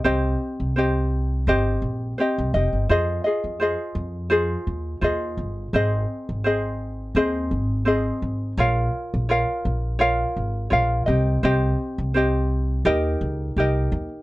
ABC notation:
X:1
M:4/4
L:1/16
Q:"Swing 16ths" 1/4=84
K:Ab
V:1 name="Ukulele"
[CGce]4 [CGce]4 [CGce]4 [CGce]2 [CGe]2 | [FAce]2 [FAe]2 [FAce]4 [FAce]4 [FAce]4 | [CAce]4 [CAce]4 [CAce]4 [CAce]4 | [FBdf]4 [FBdf]4 [FBdf]4 [FBdf]2 [CGe]2 |
[CGce]4 [CGce]4 [EGBe]4 [EGBe]4 |]
V:2 name="Upright bass" clef=bass
C,,2 z C,,4- C,, G,,,2 B,,,2 z C,, F,,, G,,, | F,,2 z F,,2 z F,,4 E,,2 E,,2 G,,,2 | A,,,2 z A,,,4- A,,, E,,2 A,,,4 A,,,2 | B,,,2 z B,,,2 z B,,,4 A,,,2 B,,,2 C,,2 |
C,,2 z C,,4- C,, E,,2 D,,2 C,,2 E,, z |]